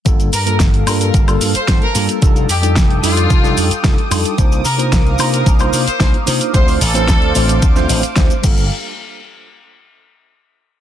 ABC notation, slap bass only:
X:1
M:4/4
L:1/8
Q:1/4=111
K:Gm
V:1 name="Slap bass" clef=bass
G,,, G,, G,,, G,, G,,, G,, G,,, G,, | F,,, F,, F,,, F,, F,,, F,, F,,, F,, | C,, C, C,, C, C,, C, C,, C, | D,, A,,, D,, A,,, D,, A,,, D,, G,,, |
z8 |]